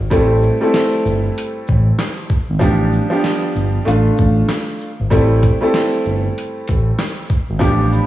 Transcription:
0.10 0.50 A1 loud
0.10 0.57 G3 medium
0.10 0.57 A3 medium
0.10 0.57 C4 medium
0.10 0.58 E4 medium
0.10 0.58 A4 loud
0.10 kick loud
0.10 closed hi-hat medium
0.43 shaker soft
0.61 2.30 G3 medium
0.61 2.31 A3 medium
0.61 2.31 C4 medium
0.61 2.31 E4 medium
0.61 2.32 A4 loud
0.74 snare loud
0.74 closed hi-hat medium
1.05 1.29 G1 loud
1.05 shaker medium
1.38 closed hi-hat medium
1.68 1.92 A1 loud
1.68 kick medium
1.68 shaker medium
1.99 snare loud
1.99 closed hi-hat medium
2.30 kick loud
2.30 shaker medium
2.50 2.59 G#1 loud
2.59 3.00 A1 loud
2.59 3.06 F3 loud
2.59 3.06 G3 medium
2.59 3.07 B3 medium
2.59 3.07 D4 medium
2.59 3.07 G4 loud
2.59 kick loud
2.59 closed hi-hat medium
2.93 shaker soft
3.10 3.85 F3 medium
3.10 3.86 G3 medium
3.10 3.86 B3 medium
3.10 3.85 D4 medium
3.10 3.87 G4 loud
3.24 snare loud
3.24 closed hi-hat medium
3.55 3.79 G1 loud
3.55 shaker medium
3.85 4.10 A1 loud
3.85 4.88 A3 medium
3.85 4.89 D4 medium
3.85 4.89 F4 loud
3.85 closed hi-hat medium
4.18 4.42 A1 loud
4.18 kick medium
4.18 shaker medium
4.49 snare loud
4.49 closed hi-hat medium
4.80 shaker medium
5.00 5.09 G#1 medium
5.10 5.50 A1 loud
5.10 5.57 G3 loud
5.10 5.57 A3 medium
5.10 5.57 C4 medium
5.10 5.58 E4 medium
5.10 5.58 A4 loud
5.10 kick loud
5.10 closed hi-hat medium
5.43 kick loud
5.43 closed hi-hat soft
5.43 shaker soft
5.61 7.30 G3 medium
5.61 7.31 A3 medium
5.61 7.31 C4 medium
5.61 7.31 E4 medium
5.61 7.32 A4 loud
5.74 snare loud
5.74 closed hi-hat medium
6.05 6.29 G1 loud
6.05 shaker medium
6.38 closed hi-hat medium
6.68 6.92 A1 loud
6.68 kick medium
6.68 closed hi-hat medium
6.68 shaker medium
6.99 snare loud
6.99 closed hi-hat medium
7.30 kick loud
7.30 shaker medium
7.50 7.59 G#1 medium
7.59 8.00 A1 loud
7.59 8.06 F3 loud
7.59 8.06 G3 medium
7.59 8.07 B3 medium
7.59 8.07 D4 medium
7.59 8.07 G4 loud
7.59 7.89 D6 loud
7.59 kick loud
7.59 closed hi-hat medium
7.92 8.07 B5 medium
7.92 shaker soft

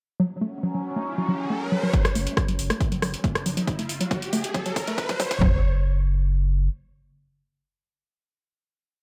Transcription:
0.20 1.98 F#3 medium
0.20 0.26 F#3 medium
0.20 1.98 C#4 medium
0.20 riser medium
0.41 0.45 A3 medium
0.63 0.69 F#3 medium
0.74 0.80 F#3 medium
0.96 1.00 A3 medium
1.18 1.23 F#3 medium
1.28 1.34 F#3 medium
1.50 1.54 A3 medium
1.72 1.78 F#3 medium
1.83 1.89 F#3 medium
1.94 2.00 F#3 medium
1.94 kick loud
1.94 closed hi-hat medium
1.94 riser medium
2.05 2.15 F#1 medium
2.05 cross-stick medium
2.05 closed hi-hat medium
2.15 2.26 F#1 loud
2.15 2.19 A3 medium
2.15 open hi-hat loud
2.27 closed hi-hat medium
2.37 2.43 F#3 medium
2.37 kick loud
2.37 cross-stick medium
2.37 closed hi-hat medium
2.48 2.58 F#1 medium
2.48 2.54 F#3 medium
2.48 closed hi-hat medium
2.59 2.70 F#1 medium
2.59 open hi-hat loud
2.70 2.73 A3 medium
2.70 cross-stick medium
2.70 closed hi-hat medium
2.81 kick loud
2.81 closed hi-hat medium
2.92 3.02 F#1 medium
2.92 2.97 F#3 medium
2.92 closed hi-hat medium
3.02 3.13 F#1 loud
3.02 3.08 F#3 medium
3.02 cross-stick medium
3.02 open hi-hat loud
3.14 closed hi-hat medium
3.24 3.28 A3 medium
3.24 kick loud
3.24 closed hi-hat medium
3.35 3.45 F#1 medium
3.35 cross-stick medium
3.35 closed hi-hat medium
3.46 3.57 F#1 loud
3.46 3.52 F#3 medium
3.46 open hi-hat loud
3.57 3.62 F#3 medium
3.57 closed hi-hat medium
3.67 kick loud
3.67 closed hi-hat medium
3.79 3.89 F#1 medium
3.79 3.82 A3 medium
3.79 closed hi-hat medium
3.89 4.00 F#1 medium
3.89 open hi-hat loud
4.01 4.06 F#3 medium
4.01 closed hi-hat medium
4.11 4.17 F#3 medium
4.11 kick loud
4.11 closed hi-hat medium
4.22 4.32 F#1 medium
4.22 closed hi-hat medium
4.33 4.44 F#1 loud
4.33 4.36 A3 medium
4.33 open hi-hat loud
4.44 closed hi-hat medium
4.54 4.60 F#3 medium
4.54 kick loud
4.54 closed hi-hat medium
4.66 4.76 F#1 medium
4.66 4.71 F#3 medium
4.66 closed hi-hat medium
4.76 4.87 F#1 loud
4.76 kick loud
4.76 open hi-hat loud
4.87 4.91 A3 medium
4.87 closed hi-hat medium
4.98 kick loud
4.98 closed hi-hat medium
5.09 5.19 F#1 medium
5.09 5.15 F#3 medium
5.09 kick loud
5.09 closed hi-hat medium
5.20 5.31 F#1 loud
5.20 5.26 F#3 medium
5.20 kick loud
5.20 open hi-hat loud
5.31 kick loud
5.31 closed hi-hat medium
5.41 6.68 F#1 loud
5.41 5.62 F#3 loud
5.41 kick loud
5.41 floor tom loud

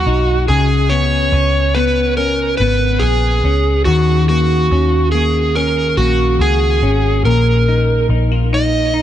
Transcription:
0.00 0.49 F#2 medium
0.00 0.57 A#3 medium
0.00 0.48 F#4 medium
0.00 0.49 F#4 medium
0.06 0.46 B1 medium
0.06 0.57 D#4 medium
0.48 1.29 C#2 loud
0.48 3.86 C#3 medium
0.48 0.92 G#4 medium
0.48 3.02 G#4 medium
0.90 1.74 B3 medium
0.90 1.77 C#5 loud
1.32 2.55 C#2 loud
1.32 2.18 C#4 medium
1.75 2.60 B3 medium
1.75 2.17 B4 medium
2.17 3.44 C#4 medium
2.17 2.57 A#4 loud
2.57 3.00 G#1 medium
2.57 3.96 B3 medium
2.57 3.02 B4 loud
2.99 3.42 A#1 medium
2.99 3.85 G#4 loud
2.99 3.87 G#4 medium
3.43 3.84 C#2 medium
3.43 4.72 C#4 medium
3.85 4.67 D#2 loud
3.85 7.37 D#3 medium
3.85 4.28 F#4 medium
3.85 6.40 F#4 medium
4.29 5.14 A#3 medium
4.29 5.11 F#4 medium
4.71 5.94 D#2 loud
4.71 5.55 C#4 medium
5.12 5.98 A#3 medium
5.12 5.56 G#4 medium
5.55 6.82 C#4 medium
5.55 5.95 A#4 medium
5.97 6.38 A#1 medium
5.97 7.68 A#3 medium
5.97 6.41 F#4 medium
6.39 6.80 C#2 loud
6.39 7.25 F#4 medium
6.39 7.25 G#4 loud
6.82 7.22 G#1 loud
6.82 7.33 C#4 medium
7.24 8.05 A#1 loud
7.24 9.02 A#2 medium
7.24 8.05 A#4 medium
7.24 9.02 A#4 medium
7.68 8.10 D#4 medium
8.09 9.02 A#1 loud
8.09 8.32 D#4 medium
8.32 8.93 F4 medium
8.53 8.94 D#4 medium
8.53 9.02 D#5 medium
8.94 9.02 D#4 medium

